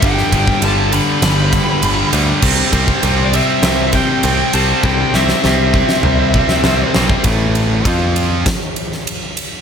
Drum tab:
CC |----------------|x---------------|----------------|----------------|
RD |x-x-x-x-x-x-x-x-|--x-x-x-x-x-x-x-|----------------|x-x-x-x-x-x-x-x-|
SD |-o------o-------|--------o-------|--ooo--o---oo-o-|--------o--o----|
T2 |----------------|----------------|--------o-------|----------------|
BD |o-oo------o-----|o-oo------o-----|o-----o---o----o|o---o---o-------|